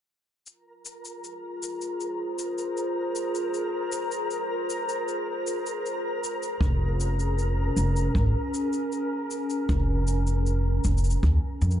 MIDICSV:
0, 0, Header, 1, 5, 480
1, 0, Start_track
1, 0, Key_signature, -4, "minor"
1, 0, Tempo, 769231
1, 287, Time_signature, 4, 2, 24, 8
1, 7363, End_track
2, 0, Start_track
2, 0, Title_t, "Synth texture"
2, 0, Program_c, 0, 99
2, 284, Note_on_c, 0, 82, 81
2, 288, Note_on_c, 0, 70, 80
2, 7363, Note_off_c, 0, 70, 0
2, 7363, Note_off_c, 0, 82, 0
2, 7363, End_track
3, 0, Start_track
3, 0, Title_t, "Ambient pad"
3, 0, Program_c, 1, 92
3, 289, Note_on_c, 1, 65, 68
3, 542, Note_on_c, 1, 68, 73
3, 1022, Note_on_c, 1, 72, 70
3, 4126, Note_on_c, 1, 61, 86
3, 4547, Note_on_c, 1, 70, 66
3, 4852, Note_off_c, 1, 65, 0
3, 5301, Note_off_c, 1, 72, 0
3, 7363, Note_off_c, 1, 61, 0
3, 7363, Note_off_c, 1, 68, 0
3, 7363, Note_off_c, 1, 70, 0
3, 7363, End_track
4, 0, Start_track
4, 0, Title_t, "Upright bass"
4, 0, Program_c, 2, 32
4, 4122, Note_on_c, 2, 29, 87
4, 4799, Note_off_c, 2, 29, 0
4, 4845, Note_on_c, 2, 29, 72
4, 5029, Note_off_c, 2, 29, 0
4, 5086, Note_on_c, 2, 32, 87
4, 5178, Note_off_c, 2, 32, 0
4, 6047, Note_on_c, 2, 29, 83
4, 6721, Note_off_c, 2, 29, 0
4, 6769, Note_on_c, 2, 29, 70
4, 6951, Note_off_c, 2, 29, 0
4, 7008, Note_on_c, 2, 39, 84
4, 7099, Note_off_c, 2, 39, 0
4, 7248, Note_on_c, 2, 41, 90
4, 7363, Note_off_c, 2, 41, 0
4, 7363, End_track
5, 0, Start_track
5, 0, Title_t, "Drums"
5, 290, Note_on_c, 9, 69, 28
5, 352, Note_off_c, 9, 69, 0
5, 533, Note_on_c, 9, 69, 65
5, 596, Note_off_c, 9, 69, 0
5, 655, Note_on_c, 9, 69, 36
5, 717, Note_off_c, 9, 69, 0
5, 775, Note_on_c, 9, 69, 28
5, 837, Note_off_c, 9, 69, 0
5, 1015, Note_on_c, 9, 69, 68
5, 1078, Note_off_c, 9, 69, 0
5, 1132, Note_on_c, 9, 69, 37
5, 1195, Note_off_c, 9, 69, 0
5, 1252, Note_on_c, 9, 69, 29
5, 1314, Note_off_c, 9, 69, 0
5, 1490, Note_on_c, 9, 69, 72
5, 1552, Note_off_c, 9, 69, 0
5, 1612, Note_on_c, 9, 69, 35
5, 1674, Note_off_c, 9, 69, 0
5, 1730, Note_on_c, 9, 69, 28
5, 1793, Note_off_c, 9, 69, 0
5, 1970, Note_on_c, 9, 69, 67
5, 2032, Note_off_c, 9, 69, 0
5, 2090, Note_on_c, 9, 69, 38
5, 2153, Note_off_c, 9, 69, 0
5, 2210, Note_on_c, 9, 69, 29
5, 2272, Note_off_c, 9, 69, 0
5, 2446, Note_on_c, 9, 69, 73
5, 2509, Note_off_c, 9, 69, 0
5, 2568, Note_on_c, 9, 69, 40
5, 2630, Note_off_c, 9, 69, 0
5, 2688, Note_on_c, 9, 69, 29
5, 2750, Note_off_c, 9, 69, 0
5, 2932, Note_on_c, 9, 69, 73
5, 2994, Note_off_c, 9, 69, 0
5, 3051, Note_on_c, 9, 69, 39
5, 3113, Note_off_c, 9, 69, 0
5, 3172, Note_on_c, 9, 69, 28
5, 3234, Note_off_c, 9, 69, 0
5, 3413, Note_on_c, 9, 69, 72
5, 3475, Note_off_c, 9, 69, 0
5, 3534, Note_on_c, 9, 69, 40
5, 3597, Note_off_c, 9, 69, 0
5, 3656, Note_on_c, 9, 69, 32
5, 3719, Note_off_c, 9, 69, 0
5, 3893, Note_on_c, 9, 69, 73
5, 3955, Note_off_c, 9, 69, 0
5, 4011, Note_on_c, 9, 69, 42
5, 4074, Note_off_c, 9, 69, 0
5, 4122, Note_on_c, 9, 36, 106
5, 4133, Note_on_c, 9, 69, 30
5, 4185, Note_off_c, 9, 36, 0
5, 4195, Note_off_c, 9, 69, 0
5, 4370, Note_on_c, 9, 69, 78
5, 4433, Note_off_c, 9, 69, 0
5, 4490, Note_on_c, 9, 69, 41
5, 4552, Note_off_c, 9, 69, 0
5, 4609, Note_on_c, 9, 69, 32
5, 4671, Note_off_c, 9, 69, 0
5, 4848, Note_on_c, 9, 69, 74
5, 4911, Note_off_c, 9, 69, 0
5, 4969, Note_on_c, 9, 69, 39
5, 5032, Note_off_c, 9, 69, 0
5, 5085, Note_on_c, 9, 36, 112
5, 5090, Note_on_c, 9, 69, 28
5, 5147, Note_off_c, 9, 36, 0
5, 5152, Note_off_c, 9, 69, 0
5, 5330, Note_on_c, 9, 69, 74
5, 5392, Note_off_c, 9, 69, 0
5, 5447, Note_on_c, 9, 69, 36
5, 5510, Note_off_c, 9, 69, 0
5, 5568, Note_on_c, 9, 69, 32
5, 5630, Note_off_c, 9, 69, 0
5, 5809, Note_on_c, 9, 69, 66
5, 5871, Note_off_c, 9, 69, 0
5, 5927, Note_on_c, 9, 69, 41
5, 5990, Note_off_c, 9, 69, 0
5, 6047, Note_on_c, 9, 36, 101
5, 6049, Note_on_c, 9, 69, 30
5, 6110, Note_off_c, 9, 36, 0
5, 6111, Note_off_c, 9, 69, 0
5, 6287, Note_on_c, 9, 69, 75
5, 6349, Note_off_c, 9, 69, 0
5, 6408, Note_on_c, 9, 69, 41
5, 6471, Note_off_c, 9, 69, 0
5, 6530, Note_on_c, 9, 69, 32
5, 6592, Note_off_c, 9, 69, 0
5, 6766, Note_on_c, 9, 69, 71
5, 6768, Note_on_c, 9, 36, 56
5, 6828, Note_off_c, 9, 69, 0
5, 6830, Note_off_c, 9, 36, 0
5, 6850, Note_on_c, 9, 69, 54
5, 6890, Note_off_c, 9, 69, 0
5, 6890, Note_on_c, 9, 69, 39
5, 6928, Note_off_c, 9, 69, 0
5, 6928, Note_on_c, 9, 69, 46
5, 6990, Note_off_c, 9, 69, 0
5, 7008, Note_on_c, 9, 36, 106
5, 7009, Note_on_c, 9, 69, 30
5, 7070, Note_off_c, 9, 36, 0
5, 7071, Note_off_c, 9, 69, 0
5, 7249, Note_on_c, 9, 69, 36
5, 7307, Note_off_c, 9, 69, 0
5, 7307, Note_on_c, 9, 69, 41
5, 7363, Note_off_c, 9, 69, 0
5, 7363, End_track
0, 0, End_of_file